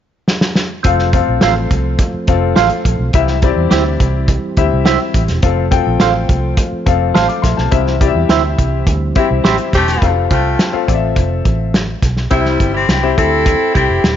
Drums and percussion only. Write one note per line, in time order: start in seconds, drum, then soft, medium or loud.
0.28 snare medium
0.41 snare medium
0.55 snare medium
0.84 kick loud
0.84 closed hi-hat medium
0.99 snare soft
1.13 kick medium
1.13 closed hi-hat medium
1.41 snare medium
1.41 closed hi-hat medium
1.71 kick medium
1.71 closed hi-hat medium
1.99 kick medium
1.99 closed hi-hat medium
2.27 kick medium
2.27 closed hi-hat medium
2.56 snare loud
2.56 closed hi-hat medium
2.70 closed hi-hat soft
2.85 kick medium
2.85 closed hi-hat medium
3.13 kick medium
3.13 closed hi-hat medium
3.27 snare soft
3.42 kick medium
3.42 closed hi-hat medium
3.71 snare medium
3.71 closed hi-hat medium
4.00 kick medium
4.00 closed hi-hat medium
4.28 kick medium
4.28 closed hi-hat medium
4.57 kick medium
4.57 closed hi-hat medium
4.86 snare loud
4.86 closed hi-hat medium
5.14 kick medium
5.14 closed hi-hat medium
5.28 snare soft
5.28 closed hi-hat soft
5.42 kick loud
5.42 closed hi-hat medium
5.72 kick medium
5.72 closed hi-hat medium
6.00 snare loud
6.00 closed hi-hat medium
6.29 kick medium
6.29 closed hi-hat medium
6.57 kick medium
6.57 closed hi-hat medium
6.87 kick medium
6.87 closed hi-hat medium
7.16 snare loud
7.16 closed hi-hat medium
7.29 closed hi-hat soft
7.44 kick medium
7.44 snare soft
7.44 closed hi-hat medium
7.58 snare soft
7.72 kick medium
7.72 closed hi-hat medium
7.87 snare soft
8.01 kick medium
8.01 closed hi-hat medium
8.29 snare loud
8.29 closed hi-hat medium
8.59 kick medium
8.59 closed hi-hat medium
8.87 kick medium
8.87 closed hi-hat medium
9.15 kick medium
9.15 closed hi-hat medium
9.45 snare loud
9.45 closed hi-hat medium
9.58 closed hi-hat soft
9.73 kick medium
9.73 snare soft
9.73 closed hi-hat medium
9.88 snare soft
9.88 closed hi-hat medium
10.02 kick medium
10.02 closed hi-hat medium
10.31 kick medium
10.31 closed hi-hat medium
10.59 snare medium
10.59 closed hi-hat medium
10.88 kick medium
10.88 closed hi-hat medium
11.16 kick medium
11.16 closed hi-hat medium
11.45 kick medium
11.45 closed hi-hat medium
11.74 snare loud
11.74 closed hi-hat medium
12.02 kick medium
12.02 snare soft
12.02 closed hi-hat medium
12.17 snare soft
12.31 kick loud
12.31 closed hi-hat medium
12.45 snare soft
12.60 kick medium
12.60 closed hi-hat medium
12.89 snare medium
12.89 closed hi-hat medium
13.18 kick medium
13.18 closed hi-hat medium
13.46 kick medium
13.46 closed hi-hat medium
13.75 kick medium
13.75 closed hi-hat medium
14.04 snare loud
14.04 closed hi-hat medium